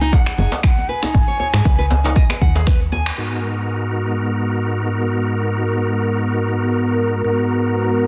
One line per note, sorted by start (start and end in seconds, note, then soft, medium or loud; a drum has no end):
0.00 0.31 C#2 medium
0.00 0.12 D#4 loud
0.00 0.14 G#5 loud
0.00 shaker medium
0.12 0.63 F#5 loud
0.12 0.25 F#5 medium
0.12 kick loud
0.12 djembe slap medium
0.12 djembe tone medium
0.12 shaker medium
0.26 0.33 G#4 medium
0.26 finger snap medium
0.26 shaker soft
0.38 0.47 F#1 medium
0.38 0.51 G#4 medium
0.38 djembe tone medium
0.52 djembe slap loud
0.52 shaker medium
0.63 0.91 F#5 medium
0.63 0.68 G#5 medium
0.63 finger snap medium
0.63 kick loud
0.63 shaker medium
0.77 djembe tone medium
0.77 shaker soft
0.89 1.02 B4 medium
0.89 2.67 G#5 loud
1.02 1.13 D#4 loud
1.02 finger snap medium
1.02 djembe slap medium
1.02 djembe tone medium
1.02 shaker medium
1.14 1.23 G#1 loud
1.14 kick loud
1.14 shaker medium
1.28 1.38 C#5 medium
1.28 shaker soft
1.40 1.47 C#5 medium
1.40 djembe tone medium
1.53 1.61 G#2 loud
1.53 1.64 G#4 loud
1.53 finger snap medium
1.53 djembe slap medium
1.53 shaker medium
1.65 2.35 C#2 medium
1.65 1.78 B4 medium
1.65 kick loud
1.65 djembe tone medium
1.65 shaker medium
1.79 1.85 B4 loud
1.79 shaker soft
1.90 djembe slap loud
1.90 djembe bass medium
2.04 2.15 D#4 loud
2.04 djembe slap loud
2.04 djembe tone medium
2.04 shaker medium
2.16 2.23 D#5 loud
2.16 kick loud
2.16 shaker medium
2.30 2.36 B4 medium
2.30 finger snap medium
2.30 djembe tone medium
2.30 shaker soft
2.41 3.11 D#2 medium
2.41 2.54 F#5 medium
2.41 kick medium
2.55 2.66 G#4 medium
2.55 djembe slap medium
2.55 shaker medium
2.66 2.79 B4 medium
2.66 finger snap medium
2.66 kick loud
2.66 djembe tone medium
2.66 shaker medium
2.80 shaker soft
2.92 3.05 G#5 medium
2.92 djembe tone medium
3.06 finger snap medium
3.06 shaker medium
3.18 7.22 G#2 medium
3.18 8.07 G#3 medium
3.18 7.22 B3 medium
3.18 8.07 B3 medium
3.18 7.22 D#4 medium
3.18 7.22 F#4 medium
3.18 8.07 F#4 medium
3.18 8.07 A#4 medium
3.18 7.22 A#4 medium
7.24 8.07 G#2 medium
7.24 8.07 B3 medium
7.24 8.07 D#4 medium
7.24 8.07 F#4 medium
7.24 8.07 A#4 medium